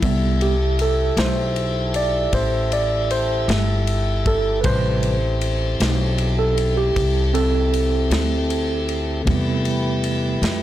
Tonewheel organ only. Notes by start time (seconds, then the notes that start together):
0.02 E4 G4 A4 E5
4.63 C4 E4 G4 A4
9.27 A3 E4 G4 B4